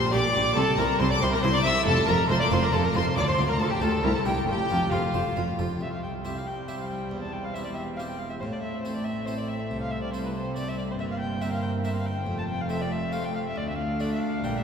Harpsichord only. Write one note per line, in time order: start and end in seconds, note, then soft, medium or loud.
0.00 0.11 A#2 medium
0.00 0.14 A#4 medium
0.13 0.33 A#2 medium
0.13 0.36 D5 medium
0.36 0.55 A#2 medium
0.36 0.57 G4 medium
0.56 0.75 C3 medium
0.78 0.98 C3 medium
0.78 1.01 E4 medium
1.00 1.19 C3 medium
1.00 1.22 C4 medium
1.22 1.41 C3 medium
1.22 1.44 G4 medium
1.44 1.63 C3 medium
1.44 1.66 C5 medium
1.65 1.84 C3 medium
1.65 1.86 E4 medium
1.87 2.06 F2 medium
2.08 2.28 F2 medium
2.08 2.31 A4 medium
2.30 2.49 F2 medium
2.30 2.52 F4 medium
2.51 2.70 F2 medium
2.51 2.74 A4 medium
2.72 2.92 F2 medium
2.72 2.95 F5 medium
2.94 3.14 F2 medium
2.94 3.16 A4 medium
3.17 3.36 D2 medium
3.38 3.57 D2 medium
3.38 3.61 F4 medium
3.60 3.79 D2 medium
3.60 3.82 A3 medium
3.81 4.01 D2 medium
3.81 4.03 A4 medium
4.03 4.23 C2 medium
4.25 4.46 C2 medium
4.25 4.41 E4 medium
4.25 4.42 A#4 medium
4.48 4.68 F2 medium
4.70 4.90 F2 medium
4.70 4.93 A4 medium
4.92 5.12 F2 medium
4.92 5.15 F4 medium
5.14 5.34 F2 medium
5.14 5.38 C5 medium
5.36 5.57 F2 medium
5.36 5.60 F5 medium
5.59 5.79 F2 medium
5.59 5.81 A4 medium
5.81 7.07 C2 soft
6.25 6.56 C4 soft
6.25 6.56 E4 soft
6.25 6.57 G4 soft
6.68 6.99 C4 soft
6.68 6.99 E4 soft
6.68 7.00 G4 soft
7.11 8.37 E2 soft
7.56 7.87 C4 soft
7.56 7.87 E4 soft
7.56 7.87 G4 soft
7.99 8.30 C4 soft
7.99 8.30 E4 soft
7.99 8.31 G4 soft
8.43 9.67 A2 soft
8.85 9.16 C4 soft
8.85 9.16 E4 soft
8.85 9.16 A4 soft
9.27 9.58 C4 soft
9.27 9.59 E4 soft
9.27 9.59 A4 soft
9.71 10.96 C3 soft
10.14 10.44 C4 soft
10.14 10.45 E4 soft
10.14 10.45 A4 soft
10.56 10.87 C4 soft
10.56 10.87 E4 soft
10.56 10.88 A4 soft
10.99 12.23 G2 soft
11.42 11.72 C4 soft
11.42 11.73 E4 soft
11.42 11.73 A#4 soft
11.85 12.15 C4 soft
11.85 12.16 E4 soft
11.85 12.16 A#4 soft
12.27 13.52 F2 soft
12.69 13.01 A3 soft
12.69 13.01 C4 soft
12.69 13.01 A4 soft
13.12 13.44 A3 soft
13.12 13.44 C4 soft
13.12 13.44 A4 soft
13.56 14.39 D2 soft
14.00 14.31 A3 soft
14.00 14.32 D4 soft
14.00 14.32 A4 soft
14.44 14.63 A#2 soft
14.44 14.63 D4 soft
14.44 14.63 A#4 soft